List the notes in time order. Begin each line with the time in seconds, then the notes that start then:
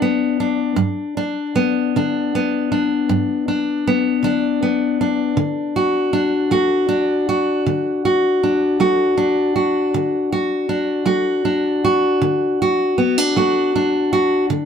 Already playing: D3 D4 G4
0.02 B3
0.40 D4
0.76 G2
1.17 D4
1.56 B3
1.96 D3 D4
2.35 B3
2.72 D4
3.09 G2
3.48 D4
3.87 B3
4.23 D3 D4
4.63 B3
5.01 D4
5.37 D3
5.76 F#4
6.13 D4
6.51 A3 F#4
6.89 D4
7.29 F#4
7.66 D3
8.05 F#4
8.43 D4
8.80 A3 F#4
9.17 D4
9.56 F#4
9.94 D3
10.32 F#4
10.69 D4
11.06 A3 F#4
11.45 D4
11.84 F#4
12.21 D3
12.62 F#4
12.98 B3
13.18 D4
13.36 A3 F#4
13.76 D4
14.13 F#4
14.50 D3